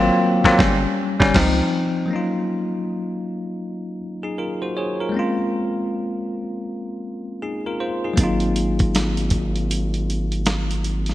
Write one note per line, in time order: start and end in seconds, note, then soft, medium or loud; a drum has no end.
0.00 0.10 G#1 loud
0.00 0.45 F#3 loud
0.00 0.45 A#3 loud
0.00 0.45 C4 medium
0.00 0.46 F4 loud
0.44 0.57 G#1 loud
0.44 0.57 F#3 loud
0.44 0.57 A#3 loud
0.44 0.57 C4 medium
0.44 0.57 F4 medium
0.44 kick loud
0.44 snare loud
0.58 0.86 G1 loud
0.58 0.86 G3 medium
0.58 0.86 C#4 loud
0.58 kick loud
0.58 snare loud
1.20 1.33 G1 loud
1.20 1.32 G3 loud
1.20 1.33 C#4 loud
1.20 kick loud
1.20 snare loud
1.34 1.62 C#2 medium
1.34 1.62 F3 medium
1.34 1.62 C4 loud
1.34 1.63 D#4 medium
1.34 kick loud
1.34 snare loud
1.34 crash medium
2.06 5.08 F#3 medium
2.06 5.09 A#3 medium
2.11 5.11 C#4 medium
2.11 3.98 D#4 medium
2.16 3.99 F4 medium
4.23 4.38 D#4 soft
4.23 4.37 G#4 medium
4.38 4.61 F4 soft
4.38 4.61 A#4 medium
4.62 4.76 F#4 soft
4.62 4.76 C5 medium
4.77 4.99 G#4 soft
4.77 4.99 C#5 medium
5.00 5.18 F4 soft
5.00 5.36 A#4 medium
5.09 8.12 G#3 medium
5.09 8.13 A#3 medium
5.14 8.14 C4 medium
5.14 8.15 C#4 medium
5.19 7.41 F4 medium
7.42 7.65 D#4 soft
7.42 7.65 G#4 medium
7.66 7.79 F4 soft
7.66 7.80 A#4 medium
7.80 8.03 F4 medium
7.80 8.03 C5 medium
8.04 8.20 D#4 soft
8.04 8.40 G#4 soft
8.13 11.14 F#3 medium
8.13 11.14 A#3 medium
8.13 closed hi-hat medium
8.18 11.14 G#1 medium
8.18 11.14 C4 medium
8.18 11.14 D#4 medium
8.18 kick medium
8.24 11.14 F4 medium
8.40 closed hi-hat soft
8.56 closed hi-hat medium
8.79 kick medium
8.79 closed hi-hat soft
8.95 snare medium
8.95 closed hi-hat medium
9.17 closed hi-hat soft
9.30 kick medium
9.30 closed hi-hat medium
9.56 closed hi-hat soft
9.71 closed hi-hat medium
9.94 closed hi-hat soft
10.10 closed hi-hat soft
10.32 closed hi-hat soft
10.46 snare medium
10.46 closed hi-hat medium
10.71 closed hi-hat soft
10.84 closed hi-hat soft
11.06 snare soft
11.06 closed hi-hat soft